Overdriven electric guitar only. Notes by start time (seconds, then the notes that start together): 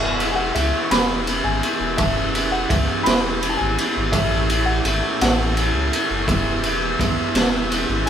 Already playing: E2 B2 E3 G#3 B3 E4
0.19 E2 B2 E3 G#3 B3 E4
0.55 E2 B2 E3 G#3 B3 E4
0.91 E2 B2 E3 G#3 B3 E4
1.27 E2 B2 E3 G#3 B3 E4
1.99 E2 B2 E3 G#3 B3 E4
2.35 E2 B2 E3 G#3 B3 E4
2.70 E2 B2 E3 G#3 B3 E4
3.05 E2 B2 E3 G#3 B3 E4
3.40 E2 B2 E3 G#3 B3 E4
4.14 A2 E3 A3 C#4 E4
4.48 A2 E3 A3 C#4 E4
4.84 A2 E3 A3 C#4 E4
5.21 A2 E3 A3 C#4 E4
5.57 A2 E3 A3 C#4 E4
6.30 E2 B2 E3 G#3 B3 E4
6.64 E2 B2 E3 G#3 B3 E4
6.99 E2 B2 E3 G#3 B3 E4
7.35 E2 B2 E3 G#3 B3 E4
7.70 E2 B2 E3 G#3 B3 E4